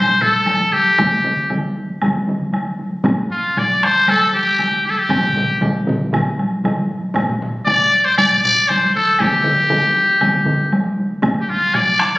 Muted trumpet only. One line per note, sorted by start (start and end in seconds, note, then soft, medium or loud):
0.00 0.23 C5 medium
0.21 0.74 A4 medium
0.73 1.50 G4 medium
3.31 3.60 F4 medium
3.59 3.86 D5 medium
3.84 4.11 C5 medium
4.09 4.33 A4 medium
4.34 4.82 G4 medium
4.86 4.91 G4 medium
4.86 5.00 A4 medium
4.98 5.62 G4 medium
7.66 8.06 D5 medium
8.04 8.17 C5 medium
8.17 8.41 D5 medium
8.43 8.69 D5 loud
8.68 8.94 C5 medium
8.95 9.22 A4 medium
9.20 10.73 G4 medium
11.41 11.51 G4 medium
11.49 11.77 F4 medium
11.75 12.18 D5 loud